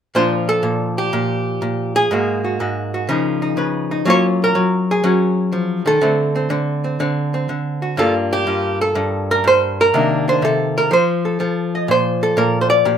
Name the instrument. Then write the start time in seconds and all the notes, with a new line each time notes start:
hollow-body jazz guitar
0.15 A#2 F3 D4 F4 C5
0.49 A4
0.63 A#2
0.98 G4
1.13 A#2
1.62 A#2
1.96 G#4
2.11 G#2 G#3 A#3 F#4
2.45 F#4
2.60 G#2 F#4
2.94 F#4
3.09 C#3 F3 D#4
3.42 D#4
3.57 C#3 B4
3.91 D#4
4.05 F#3 A#3 C#4 F4
4.10 C#5
4.44 A#4
4.55 F#3
4.91 G#4
5.04 F#3 C#4
5.52 F3
5.86 D#3 A4
6.01 D3 A3 C4
6.36 C4
6.50 D3 C4
6.84 C4
7.00 D3 C4
7.34 C4
7.49 D3
7.82 F#4
7.97 G2 G3 A#3 F4 A4
8.33 G4
8.47 G2 F4
8.81 A4
8.95 G2
9.31 A#4
9.44 G2 C5
9.81 A#4
9.94 C3 D#3 A#3 D4
10.28 D4 C5
10.42 C3 A4
10.78 A#4
10.91 F3 C5
11.25 A4
11.40 F3 A4
11.75 D#5
11.88 A#2 C5
12.23 A4
12.37 A#2 A#4
12.61 C5
12.70 D5
12.85 A#2 G4